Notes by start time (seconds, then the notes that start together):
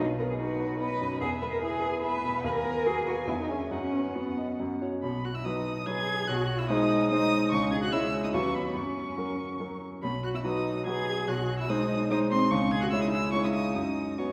0.00 B1 B4
0.19 B3 A#4
0.30 G#4
0.40 D#4 F#4
0.60 B4
0.80 B3 B4 D#5
1.01 F#2
1.20 E2 G#4 E5
1.42 B3 B4
1.51 A#4
1.61 E4 G#4 G#5
1.82 B4
2.02 B3 B4 E5
2.24 B2
2.43 D#2 B4 G#5
2.55 A#4
2.65 B3
2.86 F#4 G#4
3.07 F#4 B4
3.27 E2 E4
3.39 D#4
3.49 C#4 G#4 E5
3.71 F#2 C#4 F#5
3.93 B3
4.15 B3 F#4
4.38 D#5
4.60 F#2
4.82 F#4 C#5
5.03 B1 B3 B5
5.24 F#4 F#6
5.35 E4 E6
5.45 F#3 D#4 F#4 B4 D#6
5.86 F#3 F#4 G#4 B4 G#6
6.27 B1 F#4 F#6
6.59 E4 E6
6.69 G#3 D#4 C5 D#6
7.10 G#3 D#4 C5 D#6
7.51 C#2 C#4 C#6
7.71 G#4 G#6
7.82 F#4 F#6
7.92 G#3 E4 C#5 E6
8.23 D#4 D#6
8.33 D#2 F#3 C#4 F#4 B4 C#6
8.55 B3 B5
8.75 F#2 C#4 C#6
9.18 F#3 F#4 A#4
9.60 F#3 F#4 A#4
10.03 B1 B3 B5
10.24 F#4 F#6
10.34 E4 E6
10.44 F#3 D#4 F#4 B4 D#6
10.86 F#3 F#4 G#4 B4 G#6
11.28 B1 F#4 F#6
11.59 E4 E6
11.69 G#3 D#4 C5 D#6
12.11 G#3 D#4 C5 D#6
12.31 C4 C6
12.51 C#2 C#4 C#6
12.72 G#4 G#6
12.82 F#4 F#6
12.91 G#3 E4 C#5 E6
13.02 D#4 D#6
13.12 E4 E6
13.33 G#3 C#4 E4 C#5 C#6
13.44 D#4 D#6
13.54 D#4 D#6
13.75 F#2 D#4 D#6
14.18 B3 C#4 F#4 C#5 C#6